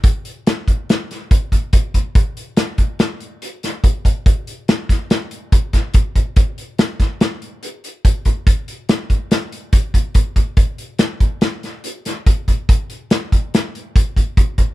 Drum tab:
HH |xxxxxxxxxx|xxxxxxxxxx|xxxxxxxxxx|xxxxxxxxxx|
SD |--o-oo----|--o-o--o--|--ooo--o--|--ooo-----|
BD |o--o--oooo|o--o----oo|o--o--oooo|o--o----oo|

HH |xxxxxxxxxx|xxxxxxxxxx|xxxxxxxxxx|
SD |--o-o-----|--o-oo-o--|--o-o-----|
BD |o--o--oooo|o--o----oo|o--o--oooo|